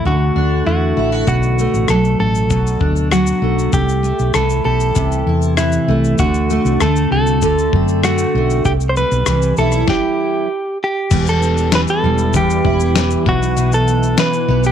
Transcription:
0.00 0.11 A2 medium
0.00 0.66 A3 soft
0.00 0.11 E4 medium
0.05 0.30 D2 medium
0.05 1.89 D3 medium
0.05 0.63 F#4 medium
0.36 0.61 D2 medium
0.36 2.80 D4 medium
0.66 0.91 E2 medium
0.66 1.59 A3 medium
0.66 1.24 E4 medium
0.66 1.09 F#4 medium
0.97 1.23 A1 medium
0.97 1.12 E4 medium
1.12 1.34 F#4 soft
1.27 1.65 B1 medium
1.27 2.49 B2 medium
1.27 1.90 F#4 medium
1.27 kick loud
1.27 shaker medium
1.43 shaker soft
1.59 3.42 A3 medium
1.59 shaker soft
1.74 1.86 A1 medium
1.74 shaker soft
1.88 2.14 B1 medium
1.88 3.10 F#3 medium
1.88 2.19 A4 medium
1.88 cross-stick loud
1.88 shaker medium
2.05 shaker soft
2.20 2.51 A1 medium
2.20 3.79 F#4 medium
2.20 3.08 A4 medium
2.35 shaker soft
2.50 2.76 B1 medium
2.50 3.73 B2 medium
2.50 kick medium
2.50 shaker medium
2.67 shaker soft
2.80 3.31 D2 medium
2.80 3.79 D4 medium
2.80 kick medium
2.96 shaker soft
3.11 3.79 F#3 medium
3.11 3.73 F#4 medium
3.11 cross-stick loud
3.11 shaker medium
3.27 shaker medium
3.42 3.67 B1 medium
3.42 4.03 A3 medium
3.59 shaker soft
3.73 4.11 C2 medium
3.73 4.34 G4 medium
3.73 kick loud
3.73 shaker medium
3.89 shaker soft
4.03 5.88 A3 medium
4.03 shaker soft
4.19 4.32 B1 medium
4.19 shaker soft
4.34 4.60 C2 medium
4.34 5.57 E3 medium
4.34 4.64 A4 medium
4.34 cross-stick loud
4.34 shaker medium
4.50 shaker soft
4.64 4.91 B1 medium
4.64 6.25 G4 medium
4.64 5.54 A4 medium
4.80 shaker soft
4.95 5.21 C2 medium
4.95 6.25 C3 medium
4.95 kick medium
4.95 shaker medium
5.12 shaker soft
5.26 5.77 E2 medium
5.26 6.25 E4 medium
5.42 shaker soft
5.57 6.19 E3 medium
5.57 6.15 E4 medium
5.57 cross-stick loud
5.57 shaker medium
5.72 shaker medium
5.88 6.13 C2 medium
5.88 6.50 A3 medium
6.04 shaker soft
6.18 6.57 D2 medium
6.18 7.42 D3 medium
6.18 6.81 F#4 medium
6.18 kick loud
6.18 shaker medium
6.34 shaker medium
6.50 6.80 A3 medium
6.50 shaker medium
6.65 6.78 C2 medium
6.65 shaker soft
6.80 7.06 D2 medium
6.80 8.03 A3 medium
6.80 7.11 A4 medium
6.80 cross-stick loud
6.80 shaker medium
6.96 shaker soft
7.11 7.42 C2 medium
7.11 8.72 F#4 medium
7.11 8.00 A4 medium
7.27 shaker medium
7.42 7.68 D2 loud
7.42 8.72 D3 medium
7.42 kick medium
7.42 shaker medium
7.59 shaker soft
7.73 8.24 F#2 medium
7.73 10.45 C4 medium
7.73 kick medium
7.88 shaker soft
8.04 8.34 A3 medium
8.04 8.65 F#4 medium
8.04 cross-stick loud
8.04 shaker medium
8.18 shaker medium
8.35 8.60 B1 medium
8.35 8.72 A3 medium
8.50 shaker soft
8.65 9.03 C2 medium
8.65 8.72 G4 medium
8.65 kick loud
8.65 shaker medium
8.81 shaker soft
8.89 8.96 C5 medium
8.96 10.45 G3 medium
8.96 9.54 B4 loud
8.96 shaker medium
9.12 9.24 B1 medium
9.12 shaker soft
9.26 9.52 C2 medium
9.26 10.45 E3 medium
9.26 cross-stick loud
9.26 shaker medium
9.42 shaker medium
9.57 9.83 B1 medium
9.57 10.45 E4 medium
9.57 9.89 A4 medium
9.57 shaker soft
9.72 cross-stick soft
9.72 shaker soft
9.88 10.77 G4 medium
9.88 kick loud
9.88 snare medium
10.84 11.29 G4 medium
11.11 11.84 E1 loud
11.11 12.33 E2 medium
11.11 13.24 E3 medium
11.11 13.24 G3 medium
11.11 14.72 B3 medium
11.11 13.24 G4 medium
11.11 kick loud
11.11 crash medium
11.11 shaker medium
11.26 11.75 A4 medium
11.26 shaker medium
11.42 shaker medium
11.58 shaker soft
11.72 12.95 E3 medium
11.72 11.80 B4 medium
11.72 snare loud
11.72 shaker medium
11.88 12.36 A4 loud
11.88 shaker soft
12.03 12.36 E1 medium
12.03 13.32 G3 medium
12.18 shaker soft
12.33 13.32 E2 medium
12.33 12.59 E2 loud
12.33 13.28 G4 medium
12.33 kick loud
12.33 shaker medium
12.50 shaker medium
12.65 13.15 E1 medium
12.65 14.72 E4 medium
12.65 kick medium
12.80 shaker soft
12.95 14.17 E3 medium
12.95 snare loud
12.95 shaker medium
13.11 shaker medium
13.26 14.14 B1 loud
13.26 13.55 B2 medium
13.26 14.72 E3 medium
13.26 13.74 F#4 medium
13.26 14.72 F#5 medium
13.26 kick loud
13.43 shaker soft
13.57 14.72 B2 medium
13.57 shaker medium
13.72 14.19 A4 medium
13.72 shaker medium
13.88 shaker medium
14.03 shaker soft
14.17 14.72 E3 medium
14.17 14.66 B4 medium
14.17 snare loud
14.17 shaker medium
14.33 shaker soft
14.48 14.72 B1 medium
14.48 14.72 B3 medium
14.64 14.72 G4 medium
14.64 shaker medium

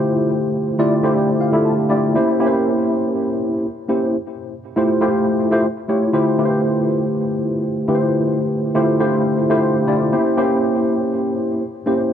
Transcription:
0.00 0.79 D3 medium
0.00 0.79 A3 medium
0.00 0.79 E4 medium
0.00 0.79 F4 medium
0.00 0.79 G4 medium
0.00 1.53 A4 medium
0.00 1.04 C5 medium
0.79 1.00 D3 medium
0.79 1.00 A3 medium
0.79 1.00 E4 medium
0.79 1.00 F4 medium
0.79 1.00 G4 medium
0.79 1.00 D5 medium
1.03 1.46 D3 medium
1.03 1.46 A3 medium
1.03 1.46 E4 medium
1.03 1.46 F4 medium
1.03 1.46 G4 medium
1.03 1.46 C5 medium
1.41 1.64 F5 medium
1.52 1.85 D3 medium
1.52 1.85 A3 medium
1.52 1.85 E4 medium
1.52 1.85 F4 medium
1.52 1.85 G4 medium
1.52 1.85 A4 medium
1.65 2.12 A5 medium
1.89 2.11 D3 medium
1.89 2.11 A3 medium
1.89 2.11 E4 medium
1.89 2.11 F4 medium
1.89 2.12 G4 medium
1.89 2.12 D5 medium
2.14 2.36 A#3 medium
2.14 2.37 C#4 medium
2.14 2.37 E4 medium
2.14 2.37 G4 medium
2.14 2.37 C5 medium
2.40 3.25 A#3 medium
2.40 3.25 C#4 medium
2.40 3.25 E4 medium
2.40 3.25 G4 medium
2.40 2.46 A#4 medium
2.47 3.29 C5 medium
3.88 4.14 A#3 medium
3.88 4.14 C#4 medium
3.88 4.14 E4 medium
3.88 4.14 G4 medium
3.88 4.15 C5 medium
4.76 4.98 A3 medium
4.76 4.98 E4 medium
4.76 4.98 F4 medium
4.76 4.98 G4 medium
4.76 4.99 C5 medium
5.01 5.44 A3 medium
5.01 5.44 E4 medium
5.01 5.44 F4 medium
5.01 5.44 G4 medium
5.01 5.45 C5 medium
5.51 5.64 A3 medium
5.51 5.64 E4 medium
5.51 5.64 F4 medium
5.51 5.64 G4 medium
5.51 5.65 C5 loud
5.88 6.10 A3 medium
5.88 6.10 E4 medium
5.88 6.10 F4 medium
5.88 6.11 G4 medium
5.88 6.11 C#5 medium
6.13 6.35 D3 medium
6.13 6.35 A3 medium
6.13 6.35 E4 medium
6.13 6.35 F4 medium
6.13 6.35 G4 medium
6.13 6.35 C5 medium
6.38 7.24 D3 medium
6.38 7.24 A3 medium
6.38 7.24 E4 medium
6.38 7.24 F4 medium
6.38 7.24 G4 medium
6.38 6.45 B4 medium
6.45 7.27 C5 medium
7.88 8.62 D3 medium
7.88 8.63 A3 medium
7.88 8.63 E4 medium
7.88 8.63 F4 medium
7.88 8.63 G4 medium
7.88 7.95 B4 medium
7.95 8.66 C5 medium
8.74 8.96 D3 medium
8.74 8.96 A3 medium
8.74 8.96 E4 medium
8.74 8.97 F4 medium
8.74 8.97 G4 medium
8.74 8.97 C5 medium
9.00 9.43 D3 medium
9.00 9.43 A3 medium
9.00 9.43 E4 medium
9.00 9.43 F4 medium
9.00 9.43 G4 medium
9.00 9.43 C5 medium
9.49 9.82 D3 medium
9.49 9.82 A3 medium
9.49 9.82 E4 medium
9.49 9.82 F4 medium
9.49 9.82 G4 medium
9.49 9.82 C5 medium
9.87 10.09 D3 medium
9.87 10.09 A3 medium
9.87 10.09 E4 medium
9.87 10.09 F4 medium
9.87 10.09 G4 medium
9.87 10.09 D5 medium
10.12 10.33 A#3 medium
10.12 10.34 C#4 medium
10.12 10.34 E4 medium
10.12 10.34 G4 medium
10.12 10.34 C5 medium
10.37 11.22 A#3 medium
10.37 11.22 C#4 medium
10.37 11.22 E4 medium
10.37 11.22 G4 medium
10.37 11.23 C5 medium
11.86 12.11 A#3 medium
11.86 12.11 C#4 medium
11.86 12.11 E4 medium
11.86 12.12 G4 medium
11.86 12.12 C5 medium

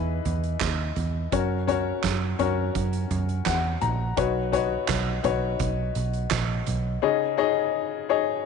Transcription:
0.00 0.19 E2 medium
0.00 1.35 E3 medium
0.00 1.34 D#4 medium
0.00 1.34 E4 medium
0.00 1.35 G#4 medium
0.00 1.35 B4 medium
0.25 0.55 E2 medium
0.25 closed hi-hat medium
0.25 floor tom medium
0.43 closed hi-hat soft
0.60 0.91 D#2 medium
0.60 kick loud
0.60 snare loud
0.60 clap medium
0.60 closed hi-hat medium
0.96 1.26 E2 medium
0.96 closed hi-hat medium
0.96 floor tom soft
1.32 1.91 F#2 medium
1.32 1.66 C#4 medium
1.32 1.66 F#4 medium
1.32 1.66 A#4 medium
1.32 1.66 C#5 medium
1.32 kick loud
1.32 closed hi-hat medium
1.67 2.35 C#4 medium
1.67 2.35 F#4 medium
1.67 2.35 A#4 medium
1.67 2.36 C#5 medium
1.67 closed hi-hat medium
1.67 floor tom medium
2.04 2.33 F#2 medium
2.04 kick loud
2.04 snare medium
2.04 clap medium
2.04 closed hi-hat medium
2.39 2.69 F#2 medium
2.39 3.74 C#4 medium
2.39 3.74 F#4 medium
2.39 3.74 A#4 medium
2.39 3.74 C#5 medium
2.39 closed hi-hat medium
2.39 floor tom medium
2.75 3.04 F#2 loud
2.75 kick medium
2.75 closed hi-hat medium
2.93 closed hi-hat medium
3.11 3.40 F#2 medium
3.11 closed hi-hat medium
3.11 floor tom medium
3.29 closed hi-hat soft
3.46 3.76 E2 medium
3.46 3.80 F#5 medium
3.46 kick loud
3.46 snare loud
3.46 clap medium
3.46 closed hi-hat medium
3.81 4.12 A#1 medium
3.81 4.15 A#5 medium
3.81 closed hi-hat medium
3.81 floor tom medium
4.17 4.76 B1 medium
4.17 5.21 B2 medium
4.17 4.51 D#4 medium
4.17 4.51 F#4 medium
4.17 4.51 B4 medium
4.17 4.51 C#5 medium
4.17 kick loud
4.17 closed hi-hat medium
4.52 5.20 D#4 medium
4.52 5.20 F#4 medium
4.52 5.20 B4 medium
4.52 5.20 C#5 medium
4.52 closed hi-hat medium
4.52 floor tom medium
4.88 5.18 B1 medium
4.88 kick loud
4.88 snare medium
4.88 clap medium
4.88 closed hi-hat medium
5.24 5.54 B1 medium
5.24 6.58 D#4 medium
5.24 6.59 F#4 medium
5.24 6.59 B4 medium
5.24 6.59 C#5 medium
5.24 closed hi-hat medium
5.24 floor tom medium
5.59 5.89 B1 loud
5.59 kick loud
5.59 closed hi-hat medium
5.95 6.25 B1 medium
5.95 closed hi-hat medium
6.13 closed hi-hat soft
6.31 6.61 A#1 medium
6.31 kick loud
6.31 snare loud
6.31 clap medium
6.31 closed hi-hat medium
6.66 6.97 B1 medium
6.66 closed hi-hat medium
6.66 floor tom medium
7.02 8.06 C#3 medium
7.02 7.36 D#4 medium
7.02 7.36 G#4 medium
7.02 7.36 C#5 medium
7.02 7.37 D#5 medium
7.37 8.05 D#4 medium
7.37 8.05 G#4 medium
7.37 8.06 C#5 medium
7.37 8.06 D#5 medium
8.09 8.46 D#4 medium
8.09 8.46 G#4 medium
8.09 8.46 C#5 medium
8.09 8.46 D#5 medium

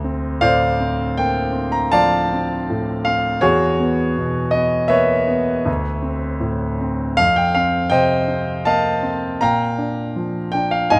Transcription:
0.00 3.39 D2 medium
0.04 0.64 C4 soft
0.41 1.02 A2 soft
0.41 1.13 C5 medium
0.41 1.13 D5 medium
0.41 1.16 F5 loud
0.80 1.40 C4 soft
1.18 1.55 A#3 soft
1.18 1.74 G5 medium
1.53 2.15 C4 soft
1.72 1.92 A#5 medium
1.92 2.54 F3 soft
1.92 3.02 D5 medium
1.92 3.02 F5 medium
1.92 3.05 A5 loud
2.33 2.92 C4 soft
2.70 3.29 A2 soft
3.05 3.43 C4 soft
3.05 3.43 F5 medium
3.41 5.63 E2 medium
3.41 4.51 F#4 medium
3.41 4.51 G#4 medium
3.41 4.55 C#5 medium
3.80 4.41 B3 soft
4.18 4.77 B2 soft
4.51 5.14 B3 soft
4.51 4.90 D#5 medium
4.88 5.29 A#3 soft
4.88 7.14 B4 medium
4.88 7.14 C#5 medium
4.88 7.18 E5 medium
5.27 5.66 B3 soft
5.66 7.15 D2 medium
6.02 6.65 C4 soft
6.40 7.04 A2 soft
6.81 7.19 C4 soft
7.17 9.36 F2 medium
7.17 7.37 F5 loud
7.36 7.56 G5 medium
7.55 8.15 C4 soft
7.55 7.92 F5 medium
7.90 8.50 C3 soft
7.90 8.62 C5 medium
7.90 8.62 D#5 medium
7.90 8.65 G5 loud
8.28 8.88 C4 soft
8.65 9.04 A#3 soft
8.65 9.37 D#5 medium
8.65 9.37 F5 medium
8.65 9.40 A5 medium
9.03 9.40 C4 soft
9.41 10.88 A#2 medium
9.41 10.49 F5 medium
9.41 10.50 G5 medium
9.41 10.53 A#5 medium
9.78 10.38 D4 soft
10.16 10.77 F3 soft
10.52 10.92 D4 soft
10.52 10.72 G5 medium
10.71 10.90 F5 medium
10.90 11.00 G#2 medium
10.90 11.00 D#5 medium
10.90 11.00 F5 medium
10.90 11.00 G#5 medium

